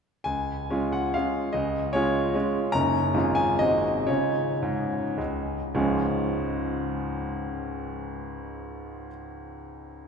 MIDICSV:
0, 0, Header, 1, 2, 480
1, 0, Start_track
1, 0, Key_signature, -5, "major"
1, 0, Tempo, 435414
1, 289, Time_signature, 3, 2, 24, 8
1, 1259, Tempo, 401070
1, 3659, Tempo, 452830
1, 4139, Tempo, 481928
1, 4619, Tempo, 541028
1, 5099, Tempo, 554017
1, 7499, Tempo, 521286
1, 8459, Tempo, 484653
1, 10085, End_track
2, 0, Start_track
2, 0, Title_t, "Grand piano"
2, 0, Program_c, 0, 0
2, 267, Note_on_c, 0, 80, 77
2, 281, Note_on_c, 0, 37, 43
2, 535, Control_c, 0, 64, 127
2, 760, Note_off_c, 0, 37, 0
2, 777, Note_on_c, 0, 56, 45
2, 777, Note_on_c, 0, 61, 50
2, 788, Note_on_c, 0, 65, 52
2, 1016, Note_off_c, 0, 80, 0
2, 1020, Note_on_c, 0, 78, 64
2, 1213, Note_off_c, 0, 56, 0
2, 1213, Note_off_c, 0, 61, 0
2, 1219, Note_off_c, 0, 65, 0
2, 1255, Note_off_c, 0, 78, 0
2, 1256, Note_on_c, 0, 77, 75
2, 1275, Control_c, 0, 64, 0
2, 1278, Note_on_c, 0, 56, 41
2, 1289, Note_on_c, 0, 61, 43
2, 1289, Note_on_c, 0, 65, 44
2, 1694, Note_off_c, 0, 56, 0
2, 1700, Note_off_c, 0, 65, 0
2, 1701, Note_off_c, 0, 61, 0
2, 1719, Note_on_c, 0, 75, 69
2, 1729, Note_off_c, 0, 77, 0
2, 1736, Note_on_c, 0, 37, 56
2, 1967, Control_c, 0, 64, 127
2, 2196, Note_off_c, 0, 37, 0
2, 2200, Note_on_c, 0, 73, 79
2, 2202, Note_off_c, 0, 75, 0
2, 2216, Note_on_c, 0, 56, 59
2, 2220, Note_on_c, 0, 61, 58
2, 2231, Note_on_c, 0, 65, 64
2, 2658, Note_off_c, 0, 56, 0
2, 2659, Note_off_c, 0, 61, 0
2, 2665, Note_off_c, 0, 65, 0
2, 2697, Note_on_c, 0, 56, 54
2, 2703, Note_on_c, 0, 61, 47
2, 2711, Note_on_c, 0, 65, 52
2, 2718, Control_c, 0, 64, 0
2, 2939, Note_off_c, 0, 73, 0
2, 3125, Note_off_c, 0, 56, 0
2, 3129, Note_off_c, 0, 61, 0
2, 3133, Note_off_c, 0, 65, 0
2, 3150, Note_on_c, 0, 82, 98
2, 3169, Note_on_c, 0, 58, 43
2, 3175, Note_on_c, 0, 30, 66
2, 3181, Note_on_c, 0, 61, 48
2, 3187, Note_on_c, 0, 63, 40
2, 3397, Control_c, 0, 64, 127
2, 3609, Note_off_c, 0, 58, 0
2, 3615, Note_off_c, 0, 61, 0
2, 3618, Note_off_c, 0, 63, 0
2, 3645, Note_off_c, 0, 30, 0
2, 3649, Note_on_c, 0, 32, 62
2, 3651, Note_on_c, 0, 56, 53
2, 3660, Note_on_c, 0, 61, 47
2, 3666, Note_on_c, 0, 65, 52
2, 3674, Control_c, 0, 64, 0
2, 3873, Note_on_c, 0, 80, 87
2, 3886, Control_c, 0, 64, 127
2, 3887, Note_off_c, 0, 82, 0
2, 4094, Note_off_c, 0, 56, 0
2, 4098, Note_off_c, 0, 61, 0
2, 4101, Note_off_c, 0, 65, 0
2, 4121, Note_off_c, 0, 32, 0
2, 4127, Note_on_c, 0, 75, 80
2, 4128, Note_off_c, 0, 80, 0
2, 4142, Note_on_c, 0, 32, 56
2, 4143, Note_on_c, 0, 56, 48
2, 4149, Note_on_c, 0, 60, 45
2, 4151, Note_on_c, 0, 66, 45
2, 4155, Control_c, 0, 64, 0
2, 4368, Control_c, 0, 64, 127
2, 4582, Note_off_c, 0, 56, 0
2, 4585, Note_off_c, 0, 60, 0
2, 4586, Note_off_c, 0, 66, 0
2, 4604, Note_on_c, 0, 73, 68
2, 4607, Note_off_c, 0, 32, 0
2, 4614, Note_off_c, 0, 75, 0
2, 4616, Note_on_c, 0, 49, 49
2, 4618, Note_on_c, 0, 61, 39
2, 4618, Note_on_c, 0, 65, 39
2, 4630, Control_c, 0, 64, 0
2, 4811, Control_c, 0, 64, 127
2, 4954, Note_off_c, 0, 49, 0
2, 5003, Note_off_c, 0, 61, 0
2, 5003, Note_off_c, 0, 65, 0
2, 5101, Note_on_c, 0, 44, 56
2, 5439, Note_off_c, 0, 44, 0
2, 5577, Note_off_c, 0, 73, 0
2, 5580, Note_on_c, 0, 37, 51
2, 5601, Control_c, 0, 64, 0
2, 5921, Note_off_c, 0, 37, 0
2, 6072, Note_on_c, 0, 44, 51
2, 6073, Note_on_c, 0, 37, 62
2, 6075, Note_on_c, 0, 53, 55
2, 6076, Note_on_c, 0, 56, 48
2, 6080, Note_on_c, 0, 61, 50
2, 6083, Note_on_c, 0, 65, 45
2, 6256, Control_c, 0, 64, 127
2, 9085, Note_off_c, 0, 37, 0
2, 9085, Note_off_c, 0, 44, 0
2, 9088, Note_off_c, 0, 53, 0
2, 9089, Note_off_c, 0, 56, 0
2, 9093, Note_off_c, 0, 61, 0
2, 9097, Note_off_c, 0, 65, 0
2, 10085, End_track
0, 0, End_of_file